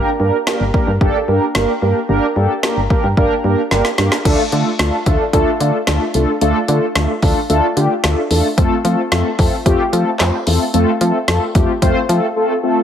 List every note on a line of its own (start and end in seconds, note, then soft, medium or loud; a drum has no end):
0.19 0.31 G2 loud
0.19 0.37 A#3 medium
0.19 0.37 D4 medium
0.19 0.37 G4 medium
0.19 0.37 A#4 loud
0.47 0.64 A#3 medium
0.47 0.64 D4 medium
0.47 0.64 G4 medium
0.47 0.64 A#4 loud
0.47 snare loud
0.60 0.71 G1 medium
0.74 0.91 A#3 medium
0.74 0.91 D4 medium
0.74 0.91 G4 medium
0.74 0.91 A#4 medium
0.74 kick medium
0.87 0.98 G2 loud
1.01 1.12 G1 loud
1.01 1.18 A#3 loud
1.01 1.18 D4 loud
1.01 1.18 G4 loud
1.01 1.18 A4 loud
1.01 kick medium
1.28 1.39 G2 loud
1.28 1.45 A#3 medium
1.28 1.45 D4 medium
1.28 1.45 G4 medium
1.28 1.45 A#4 loud
1.55 1.66 G1 loud
1.55 1.72 A#3 medium
1.55 1.72 D4 medium
1.55 1.72 G4 medium
1.55 1.72 A#4 medium
1.55 snare loud
1.82 1.93 G2 loud
1.82 1.99 A#3 medium
1.82 1.99 D4 medium
1.82 1.99 G4 medium
1.82 1.99 A#4 medium
2.09 2.20 G1 loud
2.09 2.26 A#3 loud
2.09 2.26 D4 loud
2.09 2.26 G4 loud
2.09 2.26 A#4 loud
2.36 2.47 G2 loud
2.36 2.53 A#3 medium
2.36 2.53 D4 medium
2.36 2.53 G4 medium
2.36 2.53 A4 loud
2.63 2.80 A#3 medium
2.63 2.80 D4 medium
2.63 2.80 G4 medium
2.63 2.80 A#4 loud
2.63 snare loud
2.77 2.88 G1 medium
2.90 3.07 A#3 medium
2.90 3.07 D4 medium
2.90 3.07 G4 medium
2.90 3.07 A#4 medium
2.90 kick loud
3.04 3.15 G2 loud
3.17 3.28 G1 loud
3.17 3.34 A#3 loud
3.17 3.34 D4 loud
3.17 3.34 G4 loud
3.17 3.34 A#4 loud
3.17 kick medium
3.44 3.55 G2 loud
3.44 3.61 A#3 medium
3.44 3.61 D4 medium
3.44 3.61 G4 medium
3.44 3.61 A#4 loud
3.71 3.82 G1 loud
3.71 3.88 A#3 medium
3.71 3.88 D4 medium
3.71 3.88 G4 medium
3.71 3.88 A#4 loud
3.71 snare medium
3.85 snare medium
3.98 4.09 G2 loud
3.98 4.15 A#3 medium
3.98 4.15 D4 medium
3.98 4.15 G4 medium
3.98 4.15 A#4 medium
3.98 snare medium
4.12 snare medium
4.25 4.36 D2 loud
4.25 4.42 A3 loud
4.25 4.42 D4 loud
4.25 4.42 F4 loud
4.25 4.42 A4 loud
4.25 kick loud
4.25 closed hi-hat medium
4.25 crash medium
4.52 4.63 D3 loud
4.52 4.69 A3 medium
4.52 4.69 D4 medium
4.52 4.69 F4 medium
4.52 4.69 A4 loud
4.52 closed hi-hat medium
4.79 4.90 D2 loud
4.79 4.96 A3 medium
4.79 4.96 D4 medium
4.79 4.96 F4 medium
4.79 4.96 A4 medium
4.79 snare loud
4.79 closed hi-hat medium
5.06 5.17 D2 loud
5.06 5.23 A3 medium
5.06 5.23 D4 medium
5.06 5.23 F4 medium
5.06 5.23 A4 medium
5.06 kick medium
5.06 closed hi-hat medium
5.33 5.44 D2 loud
5.33 5.50 A3 loud
5.33 5.50 D4 loud
5.33 5.50 F4 loud
5.33 5.50 A4 loud
5.33 kick medium
5.33 closed hi-hat medium
5.60 5.71 D3 loud
5.60 5.77 A3 medium
5.60 5.77 D4 medium
5.60 5.77 F4 medium
5.60 5.77 A4 medium
5.60 closed hi-hat medium
5.87 5.98 D2 loud
5.87 6.04 A3 medium
5.87 6.04 D4 medium
5.87 6.04 F4 medium
5.87 6.04 A4 medium
5.87 snare loud
5.87 closed hi-hat medium
6.14 6.26 C2 loud
6.14 6.31 A3 medium
6.14 6.31 D4 medium
6.14 6.31 F4 medium
6.14 6.31 A4 loud
6.14 closed hi-hat medium
6.41 6.52 D2 loud
6.41 6.58 A3 loud
6.41 6.58 D4 loud
6.41 6.58 F4 loud
6.41 6.58 A4 loud
6.41 closed hi-hat medium
6.68 6.79 D3 loud
6.68 6.86 A3 medium
6.68 6.86 D4 medium
6.68 6.86 F4 medium
6.68 6.86 A4 loud
6.68 closed hi-hat medium
6.95 7.07 D2 loud
6.95 7.13 A3 medium
6.95 7.13 D4 medium
6.95 7.13 F4 medium
6.95 7.13 A4 loud
6.95 snare loud
6.95 closed hi-hat medium
7.22 7.34 D2 loud
7.22 7.40 A3 medium
7.22 7.40 D4 medium
7.22 7.40 F4 medium
7.22 7.40 A4 medium
7.22 kick medium
7.22 open hi-hat soft
7.50 7.61 D2 loud
7.50 7.67 A3 loud
7.50 7.67 D4 loud
7.50 7.67 F4 loud
7.50 7.67 A4 loud
7.50 closed hi-hat medium
7.76 7.88 D3 medium
7.76 7.94 A3 medium
7.76 7.94 D4 medium
7.76 7.94 F4 medium
7.76 7.94 G4 loud
7.76 closed hi-hat medium
8.03 8.15 D2 loud
8.03 8.21 A3 medium
8.03 8.21 D4 medium
8.03 8.21 F4 medium
8.03 8.21 A4 loud
8.03 snare loud
8.03 closed hi-hat medium
8.30 8.42 E2 medium
8.30 8.48 A3 medium
8.30 8.48 D4 medium
8.30 8.48 F4 medium
8.30 8.48 A4 medium
8.30 open hi-hat medium
8.58 8.69 F2 loud
8.58 8.75 A3 loud
8.58 8.75 C4 loud
8.58 8.75 F4 loud
8.58 8.75 A4 loud
8.58 kick loud
8.58 closed hi-hat medium
8.85 8.96 F3 loud
8.85 9.02 A3 medium
8.85 9.02 C4 medium
8.85 9.02 F4 medium
8.85 9.02 A4 medium
8.85 closed hi-hat medium
9.12 9.23 F2 loud
9.12 9.29 A3 medium
9.12 9.29 C4 medium
9.12 9.29 F4 medium
9.12 9.29 A4 loud
9.12 snare loud
9.12 closed hi-hat medium
9.39 9.50 F2 loud
9.39 9.56 A3 medium
9.39 9.56 C4 medium
9.39 9.56 F4 medium
9.39 9.56 A4 medium
9.39 kick loud
9.39 open hi-hat medium
9.66 9.77 F2 loud
9.66 9.83 A3 loud
9.66 9.83 C4 loud
9.66 9.83 F4 loud
9.66 9.83 G4 loud
9.66 kick medium
9.66 closed hi-hat medium
9.92 10.04 F3 loud
9.92 10.10 A3 medium
9.92 10.10 C4 medium
9.92 10.10 F4 medium
9.92 10.10 A4 medium
9.92 closed hi-hat medium
10.20 10.31 F2 loud
10.20 10.37 A3 medium
10.20 10.37 C4 medium
10.20 10.37 F4 medium
10.20 10.37 C5 medium
10.20 snare loud
10.20 clap medium
10.20 closed hi-hat medium
10.47 10.58 E2 loud
10.47 10.64 A3 medium
10.47 10.64 C4 medium
10.47 10.64 F4 medium
10.47 10.64 A4 medium
10.47 open hi-hat medium
10.74 10.85 F2 loud
10.74 10.91 A3 loud
10.74 10.91 C4 loud
10.74 10.91 F4 loud
10.74 10.91 A4 loud
10.74 closed hi-hat medium
11.01 11.12 F3 loud
11.01 11.18 A3 medium
11.01 11.18 C4 medium
11.01 11.18 F4 medium
11.01 11.18 A4 loud
11.01 closed hi-hat medium
11.28 11.39 F2 loud
11.28 11.45 A3 medium
11.28 11.45 C4 medium
11.28 11.45 F4 medium
11.28 11.45 A4 loud
11.28 snare loud
11.28 closed hi-hat medium
11.55 11.66 F2 loud
11.55 11.72 A3 medium
11.55 11.72 C4 medium
11.55 11.72 F4 medium
11.55 11.72 G4 medium
11.55 kick loud
11.55 closed hi-hat medium
11.82 11.93 F2 loud
11.82 11.99 A3 loud
11.82 11.99 C4 loud
11.82 11.99 F4 loud
11.82 11.99 C5 loud
11.82 kick medium
11.82 closed hi-hat medium
12.09 12.20 F3 medium
12.09 12.26 A3 medium
12.09 12.26 C4 medium
12.09 12.26 F4 medium
12.09 12.26 A4 loud
12.09 closed hi-hat medium
12.36 12.53 A3 medium
12.36 12.53 C4 medium
12.36 12.53 F4 medium
12.36 12.53 A4 medium
12.63 12.80 A3 medium
12.63 12.80 C4 medium
12.63 12.80 F4 medium
12.63 12.80 A4 medium